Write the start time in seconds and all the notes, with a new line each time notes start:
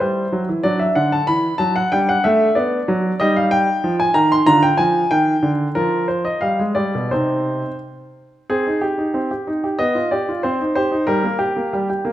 Already playing: E4
0.00 G3 C5
0.32 F#3
0.49 E3
0.63 F#3 D4 D5
0.79 E5
0.95 D3 F#5
1.12 A5
1.27 E3 B5
1.58 F#3 A5
1.76 F#5
1.92 G3 D4 G5
2.09 F#5
2.24 A3 E5
2.55 B3 D5
2.88 F#3
3.20 G3 D#4 D#5
3.36 F5
3.51 G5
3.84 F3
4.00 G#5
4.14 D#3 A#5
4.32 C6
4.46 D3 F4 A#5
4.63 G5
4.77 F3 G#5
5.11 D#3 G5
5.43 D3
5.75 F3 F4 A#4
6.08 C5
6.25 D#5
6.41 G3 F5
6.59 G#3
6.75 G3 D5
6.95 B2
7.11 C3 C4 D#4 C5
8.50 C4 G#4
8.67 D#4
8.81 G4
8.98 D#4
9.14 C4
9.31 G4
9.47 D#4
9.64 G4
9.79 B3 D#5
9.95 F4
10.11 G4 D5
10.29 F4
10.43 C4 C5
10.61 D#4
10.75 G4 C5
10.92 D#4
11.07 G3 A#4
11.24 A#3
11.39 G4
11.56 A#3
11.73 G3
11.89 G4
12.05 A#3